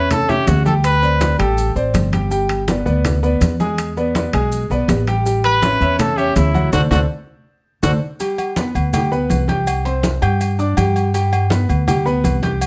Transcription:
Already playing: E2 C#4 C#5 E5
0.11 A4, high conga, low conga, high timbale, maracas
0.28 C#4 G4 C#5 E5, high conga, low conga, maracas
0.47 D2 F#4, high conga, high timbale, low timbale, maracas
0.65 G3 G4 A4 G5, high conga, maracas
0.84 B4, high conga, high timbale, maracas
1.02 C4 C5 D5, high conga, maracas
1.20 C4 C5 D5, high conga, high timbale, maracas
1.39 A1 G3 G4 A4 G5, high conga, high timbale, maracas
1.58 high conga, maracas
1.75 A1 C4 C5 D5, high conga, maracas
1.94 G1, high conga, high timbale, maracas
2.12 G3 G4 G5, high conga, high timbale, maracas
2.31 G3 G4 G5, high conga, maracas
2.49 high conga, high timbale, maracas
2.68 B3 B4 D5, high conga, high timbale, maracas
2.86 D2 B3 B4 D5, high conga, maracas
3.05 high conga, low conga, high timbale, maracas
3.23 B3 B4 D5, high conga, maracas
3.41 E2, high conga, high timbale, maracas
3.60 G#3 G#4 G#5, high conga, maracas
3.78 high conga, high timbale, maracas
3.97 B3 B4 D5, high conga, maracas
4.15 B3 B4 D5, high conga, high timbale, maracas
4.33 B1 G#3 G#4 G#5, high conga, high timbale, maracas
4.52 high conga, maracas
4.70 B1 B3 B4 D5, high conga, maracas
4.88 A1, high conga, high timbale, low timbale, maracas
5.07 G3 G4 G5, high timbale, maracas
5.25 G3 G4 G5, high conga, maracas
5.44 B4, high conga, high timbale, maracas
5.62 C#4 C#5 E5, high conga, high timbale, maracas
5.80 E2 C#4 C#5 E5, high conga, maracas
5.99 A4, high conga, low conga, high timbale, maracas
6.17 C#4 G4 C#5 E5, high conga, maracas
6.36 D2 E4, high conga, high timbale, low timbale, maracas
6.54 F#3 F#4 F#5, high conga, maracas
6.72 D2 F#4 A4 C5 D5, low conga, high timbale, maracas
6.91 D2 F#4 A4 C5 D5, low conga, high timbale, maracas
7.83 D2 F#4 A4 C5 D5, low conga, high timbale, maracas
8.20 G3 G4 G5, high conga, low agogo, maracas
8.38 high conga, low agogo, maracas
8.56 B3 B4 B5, high conga, maracas
8.75 D2, high conga, low agogo, maracas
8.93 G3 G4 G5, high conga, low conga, low agogo, maracas
9.11 B3 B4 B5, high conga, maracas
9.30 C2, high conga, low agogo, maracas
9.48 G4 G5 G6, high conga, low agogo, maracas
9.66 high conga, low agogo, maracas
9.85 C4 C5 C6, high conga, low agogo, maracas
10.03 high conga, maracas
10.22 G2 G4 G5 G6, high conga, low agogo, maracas
10.41 high conga, low agogo, maracas
10.59 D4 D5 D6, high conga, maracas
10.77 G2 G3 G4 G5, high conga, low agogo, maracas
10.96 low agogo, maracas
11.14 G3 G4 G5, high conga, low agogo, maracas
11.32 high conga, low agogo, maracas
11.50 B3 B4 B5, high conga, maracas
11.69 D2, high conga, low agogo, maracas
11.87 G3 G4 G5, high conga, low conga, low agogo, maracas
12.05 B3 B4 B5, high conga, maracas
12.24 C2, high conga, low agogo, maracas
12.43 G4 G5 G6, high conga, low agogo, maracas
12.61 high conga, low agogo, maracas

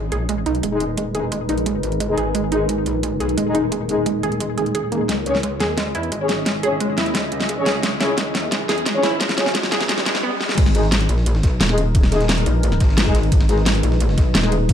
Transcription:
Already playing: G#1 G#3 D#4 A#4 B4
0.12 A#1 G#4, closed hi-hat
0.29 G#3, kick, closed hi-hat
0.46 B1 D#4, closed hi-hat
0.55 closed hi-hat
0.63 D#1 G#3, kick, closed hi-hat
0.72 G#3 D#4 G#4
0.80 closed hi-hat
0.97 G#3, kick, closed hi-hat
1.15 G#3 D#4 G#4, closed hi-hat
1.32 G#3, kick, closed hi-hat
1.49 A#1 D#4, closed hi-hat
1.58 closed hi-hat
1.66 G#3, kick, closed hi-hat
1.83 G#1, closed hi-hat
1.92 closed hi-hat
2.00 G#3, kick, closed hi-hat
2.09 G#3 D#4 G#4
2.18 G#1 G#4, closed hi-hat
2.35 G#1 G#3, kick, closed hi-hat
2.52 G#3 D#4 G#4, closed hi-hat
2.69 G#3, kick, closed hi-hat
2.86 A#1, closed hi-hat
3.03 G#3, kick, closed hi-hat
3.20 B1 G#4, closed hi-hat
3.29 closed hi-hat
3.37 D#1 G#3, kick, closed hi-hat
3.46 G#3 D#4 G#4
3.55 D#4, closed hi-hat
3.72 G#3, kick, closed hi-hat
3.89 G#3 D#4 G#4, closed hi-hat
4.06 G#3, kick, closed hi-hat
4.23 D#1 G#4, closed hi-hat
4.32 closed hi-hat
4.40 G#3, kick, closed hi-hat
4.58 G#4, closed hi-hat
4.66 closed hi-hat
4.75 G#4, kick, closed hi-hat
4.92 G#3 A#3 D#4 G#4, closed hi-hat
5.09 C#2 G#3 C#4 G#4 D#5 E5, kick, snare, closed hi-hat, riser
5.26 C#4 G#4 C#5, closed hi-hat
5.35 snare
5.43 G#3, kick, closed hi-hat
5.60 D#2 G#4, snare, closed hi-hat
5.78 G#3, kick, snare, closed hi-hat
5.95 E2 E4, closed hi-hat
6.03 closed hi-hat
6.12 G#1 G#3, kick, closed hi-hat
6.21 C#4 G#4 C#5
6.29 snare, closed hi-hat
6.46 G#3, kick, snare, closed hi-hat
6.63 C#4 G#4 C#5, closed hi-hat
6.80 G#3, kick, closed hi-hat
6.98 D#2 E4, snare, closed hi-hat
7.06 closed hi-hat
7.15 G#3, kick, snare, closed hi-hat
7.32 C#2, closed hi-hat
7.40 snare, closed hi-hat
7.49 G#3, kick, closed hi-hat
7.58 C#4 G#4 C#5
7.66 C#2 G#4, snare, closed hi-hat
7.83 C#2 G#3, kick, snare, closed hi-hat
8.00 C#4 E4 G#4 C#5, snare, closed hi-hat
8.18 G#3, kick, snare, closed hi-hat
8.35 D#2, snare, closed hi-hat
8.52 G#3, kick, snare, closed hi-hat
8.69 E2 G#4, snare, closed hi-hat
8.78 closed hi-hat
8.86 G#1 G#3, kick, snare, closed hi-hat
8.95 C#4 G#4 C#5
9.03 E4, snare, closed hi-hat
9.20 G#3, kick, snare, closed hi-hat
9.29 snare, closed hi-hat
9.38 C#4 G#4 C#5, snare, closed hi-hat
9.46 snare
9.55 G#3, kick, snare, closed hi-hat
9.63 snare
9.72 E2 G#4, snare, closed hi-hat
9.81 snare, closed hi-hat
9.89 B1 G#3, kick, snare, closed hi-hat
9.98 snare
10.06 G#3, snare, closed hi-hat
10.15 snare, closed hi-hat
10.23 B3
10.41 snare
10.49 snare
10.57 G#1 G#3 D#4 A#4 B4, kick, closed hi-hat, crash, ride
10.66 snare
10.75 G#3 D#4 G#4, snare, closed hi-hat, ride
10.83 snare
10.92 snare, closed hi-hat, ride
11.01 closed hi-hat, ride
11.09 A#1, closed hi-hat, ride
11.18 snare
11.26 closed hi-hat, ride
11.35 snare
11.43 B1, kick, snare, closed hi-hat, ride
11.61 D#1, snare, closed hi-hat, ride
11.69 G#3 D#4 G#4, snare
11.78 closed hi-hat, ride
11.95 kick, closed hi-hat, ride
12.03 snare
12.12 G#3 D#4 G#4, snare, closed hi-hat, ride
12.21 snare, closed hi-hat
12.29 snare, closed hi-hat, ride
12.38 snare, closed hi-hat
12.46 A#1, closed hi-hat, ride
12.63 closed hi-hat, ride
12.72 snare
12.80 G#1, kick, snare, closed hi-hat, ride
12.89 snare
12.98 snare, closed hi-hat, ride
13.06 G#3 D#4 G#4, kick, snare
13.15 G#1, snare, closed hi-hat, ride
13.23 ride
13.32 G#1 G#4, kick, closed hi-hat, ride
13.41 snare
13.49 G#3 D#4 G#4, snare, closed hi-hat, ride
13.58 snare
13.66 snare, closed hi-hat, ride
13.75 closed hi-hat, ride
13.83 A#1, closed hi-hat, ride
13.92 snare
14.01 closed hi-hat, ride
14.09 snare
14.18 B1, kick, snare, closed hi-hat, ride
14.35 D#1, snare, closed hi-hat, ride
14.43 G#3 D#4 G#4, snare
14.52 closed hi-hat, ride
14.69 kick, closed hi-hat, ride

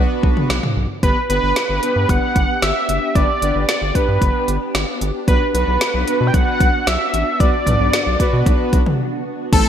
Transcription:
Already playing: B3 D4 F#4 B4 D5
0.23 B1, kick
0.37 mid tom
0.50 B1, snare
0.63 mid tom
0.77 B1
1.03 G1 B3 D4 G4 B4, kick, closed hi-hat
1.30 G1 B3 D4 G4 B4, closed hi-hat
1.43 G1
1.56 snare, closed hi-hat
1.69 G1
1.83 B3 D4 G4 B4, closed hi-hat
1.96 G2
2.09 G1 F#5, kick, closed hi-hat
2.36 G1, kick, closed hi-hat
2.62 G1 E5, snare, closed hi-hat
2.89 F#1, closed hi-hat
3.15 G1 B3 D4 G4 B4 D5, kick, closed hi-hat
3.42 G1 B3 D4 G4 B4, closed hi-hat
3.55 G1
3.69 D5, snare, closed hi-hat
3.82 G1
3.95 B3 D4 G4 B4, kick, closed hi-hat
4.08 G2
4.22 G1, kick, closed hi-hat
4.48 G1, closed hi-hat
4.75 G1, snare, closed hi-hat
5.01 G1, closed hi-hat
5.28 B1 B3 D4 F#4 B4, kick, closed hi-hat
5.54 B1 B3 D4 F#4 B4, closed hi-hat
5.68 B1
5.81 snare, closed hi-hat
5.94 B1
6.07 B3 D4 F#4 B4, closed hi-hat
6.21 B2
6.27 G5
6.34 B1 F#5, kick, closed hi-hat
6.61 B1, kick, closed hi-hat
6.87 B1 E5, snare, closed hi-hat
7.14 A1, closed hi-hat
7.40 B1 B3 D4 F#4 B4 D5, kick, closed hi-hat
7.67 B1 B3 D4 F#4 B4, closed hi-hat, mid tom
7.80 B1
7.93 snare, closed hi-hat
8.07 B1
8.20 B3 D4 F#4 B4, kick, closed hi-hat
8.33 B2
8.46 B1, kick, closed hi-hat
8.73 B1, kick, closed hi-hat
8.86 mid tom
9.53 A1 C3 A3 C4 E4 A4 B4, kick, closed hi-hat, crash

